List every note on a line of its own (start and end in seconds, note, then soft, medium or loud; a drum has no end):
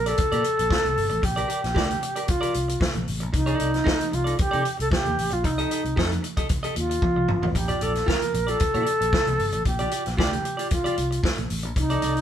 0.00 0.12 A#1 medium
0.06 0.16 G4 medium
0.06 1.26 A4 loud
0.06 0.16 A#4 medium
0.06 0.15 D5 medium
0.06 closed hi-hat medium
0.18 muted clean electric guitar stroke soft
0.18 kick loud
0.18 closed hi-hat medium
0.32 0.41 A#2 loud
0.32 0.43 G4 medium
0.32 0.44 A#4 medium
0.32 0.44 D5 medium
0.32 closed hi-hat medium
0.44 muted clean electric guitar stroke soft
0.44 closed hi-hat medium
0.58 0.68 A#1 medium
0.58 muted clean electric guitar stroke soft
0.58 closed hi-hat medium
0.69 muted clean electric guitar stroke soft
0.69 kick loud
0.69 snare loud
0.83 0.94 C2 medium
0.83 muted clean electric guitar stroke soft
0.83 closed hi-hat soft
0.97 1.08 G1 medium
0.97 open hi-hat medium
1.10 1.20 A1 loud
1.10 muted clean electric guitar stroke medium
1.10 closed hi-hat soft
1.22 1.43 A#1 loud
1.22 2.31 G4 loud
1.22 muted clean electric guitar stroke soft
1.22 kick loud
1.22 closed hi-hat medium
1.36 1.47 G4 medium
1.36 1.48 A#4 medium
1.36 1.49 D5 medium
1.36 closed hi-hat soft
1.48 1.59 G4 medium
1.48 1.60 A#4 medium
1.48 1.60 D5 medium
1.48 closed hi-hat medium
1.62 1.73 A#1 medium
1.62 muted clean electric guitar stroke medium
1.62 snare soft
1.62 closed hi-hat soft
1.74 1.96 D2 loud
1.74 1.89 G4 medium
1.74 1.89 A#4 medium
1.74 1.87 D5 loud
1.74 kick loud
1.74 snare loud
1.89 muted clean electric guitar stroke soft
1.89 closed hi-hat medium
2.01 muted clean electric guitar stroke medium
2.01 closed hi-hat medium
2.16 2.26 G4 soft
2.16 2.26 A#4 soft
2.16 2.25 D5 medium
2.16 closed hi-hat medium
2.27 2.82 F4 medium
2.27 muted clean electric guitar stroke soft
2.27 kick loud
2.27 closed hi-hat medium
2.41 2.53 G4 medium
2.41 2.54 A#4 medium
2.41 2.54 D5 medium
2.41 closed hi-hat medium
2.54 2.75 C2 loud
2.54 muted clean electric guitar stroke soft
2.54 closed hi-hat medium
2.68 muted clean electric guitar stroke medium
2.68 closed hi-hat medium
2.80 muted clean electric guitar stroke soft
2.80 kick loud
2.80 snare loud
2.94 3.04 A#1 loud
2.94 muted clean electric guitar stroke soft
2.94 closed hi-hat soft
3.08 3.22 A1 loud
3.08 open hi-hat medium
3.20 3.31 A#1 loud
3.20 muted clean electric guitar stroke soft
3.20 closed hi-hat soft
3.32 3.54 C2 loud
3.32 4.16 D#4 medium
3.32 muted clean electric guitar stroke soft
3.32 kick loud
3.32 closed hi-hat medium
3.46 3.57 D#4 medium
3.46 3.58 A4 medium
3.46 3.59 D5 medium
3.46 closed hi-hat soft
3.58 3.80 C2 loud
3.58 3.70 D#4 medium
3.58 3.70 A4 medium
3.58 3.70 D5 medium
3.58 closed hi-hat medium
3.74 snare soft
3.74 closed hi-hat soft
3.84 3.99 D#4 loud
3.84 3.99 A4 medium
3.84 3.98 D#5 loud
3.84 kick loud
3.84 snare loud
3.99 muted clean electric guitar stroke soft
3.99 closed hi-hat medium
4.11 4.33 C2 loud
4.11 4.39 F4 medium
4.11 muted clean electric guitar stroke soft
4.11 closed hi-hat medium
4.24 4.36 D#4 soft
4.24 4.36 A4 soft
4.24 4.35 D5 soft
4.24 closed hi-hat medium
4.37 4.77 G4 loud
4.37 muted clean electric guitar stroke soft
4.37 muted fingered electric bass stroke medium
4.37 kick loud
4.37 closed hi-hat medium
4.51 4.62 C3 loud
4.51 4.63 D#4 medium
4.51 4.63 A4 medium
4.51 4.64 D5 loud
4.51 closed hi-hat medium
4.64 muted clean electric guitar stroke medium
4.64 closed hi-hat medium
4.77 4.89 C2 medium
4.77 4.92 A4 loud
4.77 muted clean electric guitar stroke soft
4.77 closed hi-hat medium
4.90 5.34 G4 loud
4.90 muted clean electric guitar stroke soft
4.90 kick loud
4.90 snare loud
5.04 5.15 D#2 medium
5.04 muted clean electric guitar stroke soft
5.04 closed hi-hat soft
5.18 5.28 A1 medium
5.18 open hi-hat medium
5.31 5.45 A#1 medium
5.31 5.46 F4 medium
5.31 muted clean electric guitar stroke medium
5.31 closed hi-hat soft
5.44 5.64 C2 loud
5.44 6.23 D#4 medium
5.44 muted clean electric guitar stroke soft
5.44 kick medium
5.44 closed hi-hat medium
5.58 5.68 G4 medium
5.58 5.69 A4 medium
5.58 5.70 D#5 medium
5.58 closed hi-hat soft
5.70 5.81 G4 medium
5.70 5.81 A4 medium
5.70 5.82 D#5 medium
5.70 closed hi-hat medium
5.84 5.94 C2 medium
5.84 muted clean electric guitar stroke soft
5.84 closed hi-hat soft
5.96 6.17 F2 loud
5.96 6.10 G4 medium
5.96 6.11 A4 medium
5.96 6.09 D#5 medium
5.96 kick loud
5.96 snare loud
6.10 muted clean electric guitar stroke soft
6.10 closed hi-hat soft
6.23 muted clean electric guitar stroke soft
6.23 closed hi-hat medium
6.37 6.47 G4 soft
6.37 6.47 A4 medium
6.37 6.46 D#5 medium
6.37 kick loud
6.37 closed hi-hat medium
6.49 muted clean electric guitar stroke soft
6.49 kick loud
6.49 closed hi-hat medium
6.63 6.74 G4 medium
6.63 6.75 A4 medium
6.63 6.75 D#5 medium
6.63 closed hi-hat soft
6.75 6.96 D#2 medium
6.75 7.51 F4 loud
6.75 muted clean electric guitar stroke soft
6.75 closed hi-hat medium
6.90 muted clean electric guitar stroke soft
6.90 closed hi-hat medium
7.02 muted clean electric guitar stroke soft
7.02 kick loud
7.02 high tom medium
7.16 7.26 C2 medium
7.16 muted clean electric guitar stroke medium
7.28 7.39 G1 medium
7.28 mid tom medium
7.42 7.55 A1 medium
7.42 muted clean electric guitar stroke soft
7.42 floor tom loud
7.55 7.75 A#1 loud
7.55 7.84 G4 medium
7.55 muted clean electric guitar stroke soft
7.55 kick loud
7.55 closed hi-hat medium
7.68 7.79 F4 medium
7.68 7.81 G4 medium
7.68 7.80 D5 medium
7.68 closed hi-hat soft
7.81 8.01 A#1 loud
7.81 7.91 F4 medium
7.81 7.92 G4 medium
7.81 8.09 A4 loud
7.81 7.92 D5 medium
7.81 closed hi-hat medium
7.95 muted clean electric guitar stroke soft
7.95 snare soft
7.95 closed hi-hat soft
8.06 8.20 F4 medium
8.06 8.21 G4 medium
8.06 8.51 A#4 loud
8.06 8.21 F5 medium
8.06 kick loud
8.06 snare loud
8.21 muted clean electric guitar stroke soft
8.21 closed hi-hat medium
8.34 8.54 A#1 medium
8.34 muted clean electric guitar stroke soft
8.34 closed hi-hat medium
8.47 8.58 F4 soft
8.47 8.57 G4 soft
8.47 9.66 A4 loud
8.47 8.57 D5 soft
8.47 closed hi-hat soft
8.60 muted clean electric guitar stroke soft
8.60 kick loud
8.60 closed hi-hat medium
8.74 8.84 A#2 loud
8.74 8.86 F4 medium
8.74 8.87 G4 medium
8.74 8.87 D5 medium
8.74 closed hi-hat soft
8.86 muted clean electric guitar stroke soft
8.86 closed hi-hat medium
9.01 9.10 A#1 medium
9.01 muted clean electric guitar stroke soft
9.01 closed hi-hat medium
9.13 muted clean electric guitar stroke soft
9.13 kick loud
9.13 snare loud
9.27 9.36 C2 medium
9.27 muted clean electric guitar stroke medium
9.27 closed hi-hat soft
9.39 9.50 G1 medium
9.39 open hi-hat medium
9.52 9.62 A1 medium
9.52 muted clean electric guitar stroke medium
9.52 closed hi-hat soft
9.65 9.85 A#1 loud
9.65 10.15 G4 medium
9.65 muted clean electric guitar stroke soft
9.65 kick loud
9.65 closed hi-hat medium
9.79 9.90 F4 medium
9.79 9.91 G4 medium
9.79 9.91 D5 medium
9.79 closed hi-hat soft
9.91 10.02 F4 medium
9.91 10.03 G4 medium
9.91 10.03 D5 medium
9.91 closed hi-hat medium
10.05 10.16 A#1 medium
10.05 muted clean electric guitar stroke soft
10.05 snare soft
10.05 closed hi-hat soft
10.17 10.38 D2 loud
10.17 10.31 F4 medium
10.17 10.32 G4 loud
10.17 10.68 G4 loud
10.17 10.31 D5 loud
10.17 kick loud
10.17 snare loud
10.32 muted clean electric guitar stroke medium
10.32 closed hi-hat medium
10.44 muted clean electric guitar stroke soft
10.44 closed hi-hat medium
10.57 10.68 F4 medium
10.57 10.68 G4 medium
10.57 10.67 D5 medium
10.57 closed hi-hat medium
10.71 11.21 F4 medium
10.71 muted clean electric guitar stroke soft
10.71 kick loud
10.71 closed hi-hat medium
10.84 10.96 F4 medium
10.84 10.96 G4 medium
10.84 10.96 D5 medium
10.84 closed hi-hat medium
10.97 11.17 C2 loud
10.97 muted clean electric guitar stroke soft
10.97 closed hi-hat medium
11.11 muted clean electric guitar stroke medium
11.11 closed hi-hat medium
11.23 muted clean electric guitar stroke soft
11.23 kick loud
11.23 snare loud
11.37 11.47 A#1 medium
11.37 muted clean electric guitar stroke soft
11.37 closed hi-hat soft
11.50 11.65 A1 loud
11.50 open hi-hat medium
11.63 11.73 A#1 loud
11.63 muted clean electric guitar stroke soft
11.63 closed hi-hat soft
11.76 11.96 C2 loud
11.76 12.21 D#4 loud
11.76 muted clean electric guitar stroke soft
11.76 kick loud
11.76 closed hi-hat medium
11.90 12.01 D#4 medium
11.90 12.02 A4 medium
11.90 12.02 D5 medium
11.90 closed hi-hat soft
12.02 12.21 C2 loud
12.02 12.13 D#4 medium
12.02 12.13 A4 medium
12.02 12.14 D5 medium
12.02 closed hi-hat medium
12.17 closed hi-hat soft